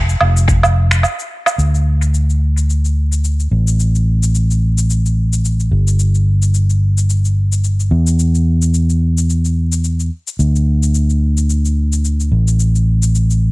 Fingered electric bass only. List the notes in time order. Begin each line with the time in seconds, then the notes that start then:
Already playing: F1
0.21 F1
1.58 D2
3.52 A1
5.71 G1
7.91 E2
10.39 D2
12.32 A1